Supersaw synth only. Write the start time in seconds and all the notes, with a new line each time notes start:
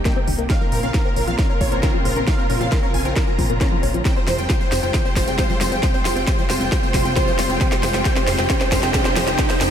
Already playing: G5
0.50 F5
0.61 A#4
0.72 A#4
0.83 F5
0.94 A#4
1.05 A#4
1.16 A#4
1.28 F5
1.39 A#4
1.50 A#4
1.61 C#5
1.72 A#4
1.83 A#4
2.05 A#4
2.16 A#4
2.28 F5
2.39 A#4
2.50 A#4
2.61 F5
2.72 A#4
2.83 A#4
2.94 G#5
3.05 A#4
3.16 A#4
3.27 A#5
4.05 G5
4.16 C5
4.28 C5
4.39 G5
4.50 C5
4.61 C5
4.72 C5
4.83 G5
4.94 G5
5.05 C5
5.16 C5
5.28 G5
5.39 C5
5.50 C5
5.61 C5
5.72 G5
5.83 G5
5.94 C5
6.05 C5
6.17 G5
6.28 C5
6.39 C5
6.50 C5
6.61 G5
6.72 G5
6.83 C5
6.94 C5
7.05 G5
7.16 C5
7.28 C5
7.39 C5
7.50 G5
7.61 G5
7.72 C5
7.83 C5
7.94 G5
8.05 G5
8.16 C5
8.28 C5
8.39 G5
8.50 G5
8.61 C5
8.72 C5
8.83 G5
8.94 G5
9.05 C5
9.16 C5
9.27 G5
9.39 G5
9.50 C5
9.61 G5